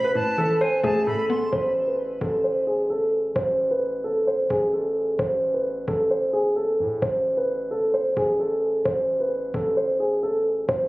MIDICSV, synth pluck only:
0, 0, Header, 1, 2, 480
1, 0, Start_track
1, 0, Key_signature, 0, "minor"
1, 0, Tempo, 458015
1, 1599, Time_signature, 4, 2, 24, 8
1, 11405, End_track
2, 0, Start_track
2, 0, Title_t, "Synth pluck"
2, 0, Program_c, 0, 84
2, 0, Note_on_c, 0, 45, 91
2, 0, Note_on_c, 0, 47, 88
2, 0, Note_on_c, 0, 57, 85
2, 148, Note_off_c, 0, 45, 0
2, 158, Note_off_c, 0, 57, 0
2, 160, Note_on_c, 0, 45, 80
2, 396, Note_on_c, 0, 52, 82
2, 640, Note_off_c, 0, 47, 0
2, 875, Note_on_c, 0, 57, 91
2, 1108, Note_off_c, 0, 45, 0
2, 1121, Note_on_c, 0, 45, 92
2, 1359, Note_on_c, 0, 59, 92
2, 1597, Note_off_c, 0, 52, 0
2, 1597, Note_off_c, 0, 57, 0
2, 1599, Note_off_c, 0, 59, 0
2, 1600, Note_off_c, 0, 45, 0
2, 11405, End_track
0, 0, End_of_file